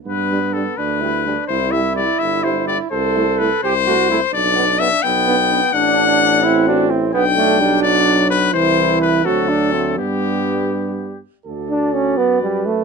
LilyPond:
<<
  \new Staff \with { instrumentName = "Trumpet" } { \time 6/8 \key g \major \tempo 4. = 84 b'4 a'8 b'4. | c''8 e''8 d''8 e''8 c''8 d''8 | c''4 b'8 c''4. | d''4 e''8 g''4. |
fis''2~ fis''8 r8 | g''4. d''4 b'8 | c''4 b'8 a'4. | g'2~ g'8 r8 |
\key d \major d''2. | }
  \new Staff \with { instrumentName = "Flugelhorn" } { \time 6/8 \key g \major b4. d'8 e'8 d'8 | e'2. | a'4. g'8 fis'8 e'8 | d'4. b4. |
d'4. e'8 d'8 c'8 | b8 d'8 d'4. r8 | e'4. fis'8 d'8 c'8 | b2~ b16 r8. |
\key d \major a'4. b'4. | }
  \new Staff \with { instrumentName = "French horn" } { \time 6/8 \key g \major r8 d'8 d'8 r8 d'8 d'8 | r8 e'8 e'8 r8 e'8 e'8 | r8 e'8 e'8 r8 e'8 e'8 | r8 d'8 d'8 r8 d'8 d'8 |
d'4. e'8 fis'8 e'8 | d'4. d'4. | e'4. c'8 d'8 a8 | b2~ b8 r8 |
\key d \major fis'2. | }
  \new Staff \with { instrumentName = "Trombone" } { \time 6/8 \key g \major r8 g8 g8 r8 g8 g8 | r8 g8 g8 r8 g8 g8 | r8 a8 a8 r8 a8 a8 | r8 b8 b8 r8 b8 b8 |
d'4. c'4. | b8 a8 g8 fis4. | e4. fis4. | g2~ g8 r8 |
\key d \major r8 d'8 cis'8 b8 g8 a8 | }
  \new Staff \with { instrumentName = "Tuba" } { \clef bass \time 6/8 \key g \major g,4. d,4. | c,4. g,,4. | c,4. c,4. | b,,4. b,,4. |
a,,2. | b,,2. | c,4. d,4. | g,2~ g,8 r8 |
\key d \major d,4. fis,4. | }
>>